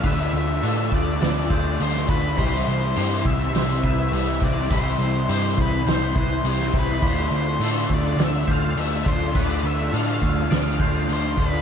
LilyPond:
<<
  \new Staff \with { instrumentName = "Clean electric guitar" } { \time 4/4 \key d \dorian \tempo 4 = 103 b'4 a'4 d''8 c''4 r8 | b''4 g'4 c''8 b'4 r8 | b''4 g'4 c''8 b'4 r8 | b''4 a'4 d''8 c''4 r8 |
b'4 a'4 d''8 c''4 r8 | }
  \new Staff \with { instrumentName = "Lead electric guitar" } { \time 4/4 \key d \dorian e''4. d''8 d''4 c''8 b'8 | c''4. e''4 e''4 d''8 | c''4 c''8 b'8 c''8 c''8 c''8 b'8 | c''4. d''8 e''8 f''8 e''8 c''8 |
d''8 e''8 f''2 c''8 b'8 | }
  \new Staff \with { instrumentName = "Overdriven electric guitar" } { \time 4/4 \key d \dorian <d a d' f'>4 <d a d' f'>4. <a d' f'>8 <d a d' f'>8 <a d' f'>8 | <c e g c' e'>4 <e g c' e'>4. <g c' e'>8 <e g c' e'>8 <g c' e'>8 | <c e g c' e'>4 <e g c' e'>4. <g c' e'>8 <e g c' e'>8 <g c' e'>8 | <d a d' f'>4 <d a d' f'>4. <a d' f'>8 <d a d' f'>8 <a d' f'>8 |
<d a d' f'>4 <d a d' f'>4. <a d' f'>8 <d a d' f'>8 <a d' f'>8 | }
  \new Staff \with { instrumentName = "Overdriven electric guitar" } { \time 4/4 \key d \dorian <d a d'>2.~ <d a d'>8 <d a d'>8 | <c g c'>2.~ <c g c'>8 <c g c'>8 | <c g c'>2.~ <c g c'>8 <c g c'>8 | <d a d'>2.~ <d a d'>8 <d a d'>8 |
<d a d'>2.~ <d a d'>8 <d a d'>8 | }
  \new Staff \with { instrumentName = "Picked electric bass" } { \clef bass \time 4/4 \key d \dorian d,8 d,8 a,8 d,8 d,8 d,8 d,8 d,8 | c,8 c,8 g,8 c,8 c,8 c,8 c,8 c,8 | c,8 c,8 g,8 c,8 c,8 c,8 c,8 c,8 | d,8 d,8 a,8 d,8 d,8 d,8 d,8 d,8 |
d,8 d,8 a,8 d,8 d,8 d,8 d,8 d,8 | }
  \new DrumStaff \with { instrumentName = "Drums" } \drummode { \time 4/4 <cymc bd>4 cymc8 bd8 <cymc sn>8 bd8 cymc16 sn16 bd8 | <cymc bd>4 cymc8 bd8 <cymc sn>8 bd8 cymc8 bd8 | <cymc bd>4 cymc8 bd8 <cymc sn>8 bd8 cymc16 sn16 bd8 | <cymc bd>4 cymc8 bd8 <cymc sn>8 bd8 cymc8 bd8 |
<cymc bd>4 cymc8 bd8 <cymc sn>8 bd8 cymc8 bd8 | }
>>